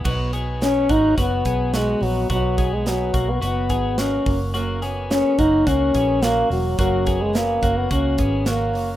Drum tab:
CC |x-------|--------|--------|--------|
HH |-xxxxxxo|xxxxxxxo|xxxxxxxo|xxxxxxxo|
SD |--o-o-o-|--o---o-|--o-o-o-|--o---o-|
BD |o--ooo--|oo-o-o-o|---ooo--|oo-ooo--|